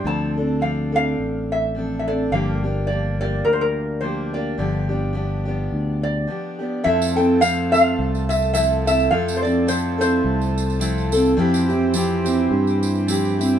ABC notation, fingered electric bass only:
X:1
M:4/4
L:1/8
Q:"Swing" 1/4=106
K:F
V:1 name="Fingered electric bass" clef=bass
D,,4 A,,,4 | G,,,4 D,,4 | G,,,4 D,,2 z2 | F,,4 C,,4 |
F,,4 C,,4 | F,,4 G,,4 |]